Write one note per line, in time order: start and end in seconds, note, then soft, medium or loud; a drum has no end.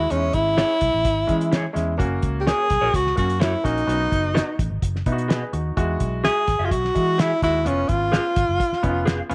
0.00 0.13 E4 medium
0.10 0.29 E2 loud
0.10 0.77 G#3 medium
0.10 0.77 C#4 medium
0.10 0.36 C#4 medium
0.10 0.17 D#4 medium
0.10 closed hi-hat medium
0.17 0.80 E4 medium
0.33 0.62 G#1 medium
0.33 1.76 E4 medium
0.33 kick medium
0.33 closed hi-hat medium
0.57 0.70 E4 medium
0.57 0.70 G#4 medium
0.57 0.70 C#5 medium
0.57 snare medium
0.57 closed hi-hat medium
0.81 0.91 B1 medium
0.81 kick medium
0.81 closed hi-hat medium
0.94 1.03 A1 medium
1.05 1.23 G#1 medium
1.05 kick medium
1.05 closed hi-hat medium
1.27 1.65 E3 medium
1.27 1.61 G#3 medium
1.27 1.61 C#4 medium
1.27 1.62 E4 medium
1.27 kick medium
1.27 closed hi-hat medium
1.41 closed hi-hat medium
1.52 1.64 E4 medium
1.52 1.64 G#4 medium
1.52 1.65 C#5 medium
1.52 snare loud
1.52 closed hi-hat medium
1.73 2.01 E2 medium
1.73 1.91 G#3 medium
1.73 1.92 C#4 medium
1.73 1.92 E4 medium
1.73 snare soft
1.73 closed hi-hat medium
1.98 2.18 F#1 medium
1.98 2.65 A#3 medium
1.98 2.65 C#4 medium
1.98 2.66 F#4 medium
1.98 kick medium
1.98 closed hi-hat medium
2.22 2.51 C#2 medium
2.22 kick medium
2.22 closed hi-hat medium
2.41 2.49 G4 medium
2.47 2.59 F#4 medium
2.47 2.97 G#4 loud
2.47 2.59 A#4 medium
2.47 2.59 C#5 medium
2.47 snare medium
2.47 closed hi-hat medium
2.70 2.79 B1 medium
2.70 kick medium
2.70 snare soft
2.70 closed hi-hat medium
2.81 2.91 A#1 medium
2.81 2.92 F#4 soft
2.81 2.92 A#4 soft
2.81 2.91 C#5 medium
2.94 3.12 C#2 medium
2.94 3.17 F#4 medium
2.94 kick medium
2.94 closed hi-hat medium
3.07 snare soft
3.16 3.54 F#2 medium
3.16 3.50 A#3 medium
3.16 3.50 C#4 soft
3.16 3.50 F#4 medium
3.16 3.42 F#4 medium
3.16 kick medium
3.16 closed hi-hat medium
3.30 closed hi-hat soft
3.40 3.66 E4 medium
3.40 3.52 F#4 medium
3.40 3.52 A#4 medium
3.40 3.53 C#5 medium
3.40 snare loud
3.40 closed hi-hat medium
3.64 3.83 A#1 medium
3.64 3.81 A#3 medium
3.64 3.81 C#4 medium
3.64 4.59 D#4 medium
3.64 3.82 F#4 medium
3.64 kick medium
3.64 snare soft
3.64 closed hi-hat medium
3.78 closed hi-hat soft
3.87 4.06 B1 medium
3.87 4.54 B3 medium
3.87 3.93 C#4 soft
3.87 4.54 F#4 medium
3.87 closed hi-hat medium
3.93 4.57 D#4 medium
4.12 4.39 F#1 medium
4.12 kick medium
4.12 closed hi-hat medium
4.34 4.47 F#4 medium
4.34 4.47 B4 medium
4.34 4.47 D#5 medium
4.34 snare medium
4.34 closed hi-hat medium
4.59 4.68 A1 medium
4.59 kick loud
4.59 closed hi-hat medium
4.70 4.80 G#1 medium
4.82 5.01 F#1 medium
4.82 kick medium
4.82 closed hi-hat medium
4.96 snare soft
5.06 5.43 B2 medium
5.06 5.40 B3 medium
5.06 5.30 D#4 medium
5.06 5.12 E4 medium
5.06 kick medium
5.06 closed hi-hat medium
5.12 5.33 F#4 medium
5.18 closed hi-hat soft
5.28 5.41 F#4 medium
5.28 5.52 G#4 medium
5.28 5.52 B4 medium
5.28 5.41 B4 medium
5.28 5.42 D#5 medium
5.28 snare loud
5.28 closed hi-hat medium
5.53 5.72 D#2 medium
5.53 5.98 D#4 soft
5.53 5.76 F#4 medium
5.53 closed hi-hat medium
5.77 5.95 E2 medium
5.77 6.43 G#3 medium
5.77 6.43 E4 medium
5.77 6.43 F#4 medium
5.77 kick loud
5.77 closed hi-hat medium
6.00 6.28 B1 medium
6.00 kick medium
6.00 closed hi-hat medium
6.24 6.36 F#4 medium
6.24 6.36 G#4 medium
6.24 6.66 G#4 loud
6.24 6.36 E5 medium
6.24 snare medium
6.24 closed hi-hat medium
6.47 6.57 G#1 medium
6.47 kick medium
6.47 snare soft
6.47 closed hi-hat medium
6.59 6.69 F#1 medium
6.59 6.69 F#4 soft
6.59 6.69 G#4 soft
6.59 6.69 E5 medium
6.65 6.73 F4 medium
6.71 6.89 B1 medium
6.71 7.22 F#4 medium
6.71 kick medium
6.71 closed hi-hat medium
6.85 snare soft
6.95 7.32 E3 medium
6.95 7.28 G#3 medium
6.95 7.28 E4 medium
6.95 7.28 F#4 medium
6.95 kick medium
6.95 closed hi-hat medium
7.18 7.43 E4 medium
7.18 7.30 F#4 medium
7.18 7.30 G#4 medium
7.18 7.31 E5 medium
7.18 snare loud
7.18 closed hi-hat loud
7.42 7.67 D#2 medium
7.42 7.59 G#3 medium
7.42 7.59 E4 medium
7.42 7.69 E4 medium
7.42 7.59 F#4 medium
7.42 kick medium
7.42 snare soft
7.42 closed hi-hat medium
7.65 7.84 F1 medium
7.65 8.31 B3 medium
7.65 8.32 C#4 medium
7.65 7.91 C#4 medium
7.65 8.32 F4 medium
7.65 closed hi-hat medium
7.89 8.17 G#1 medium
7.89 9.31 F4 medium
7.89 kick medium
7.89 closed hi-hat medium
8.12 8.24 G#4 medium
8.12 8.24 B4 medium
8.12 8.25 F5 medium
8.12 snare medium
8.12 closed hi-hat medium
8.36 8.46 G#1 medium
8.36 kick loud
8.36 closed hi-hat medium
8.49 8.58 F#1 medium
8.60 kick medium
8.60 closed hi-hat medium
8.72 muted fingered electric bass stroke soft
8.72 snare soft
8.83 9.20 F1 medium
8.83 9.16 B3 medium
8.83 9.17 C#4 medium
8.83 8.89 D#4 medium
8.83 kick medium
8.83 closed hi-hat medium
8.89 9.19 F4 medium
9.06 9.18 G#4 medium
9.06 9.18 B4 medium
9.06 9.19 F5 medium
9.06 snare loud
9.06 closed hi-hat medium
9.29 9.35 F1 loud
9.29 9.35 B3 medium
9.29 9.35 C#4 medium
9.29 9.35 F4 medium
9.29 closed hi-hat medium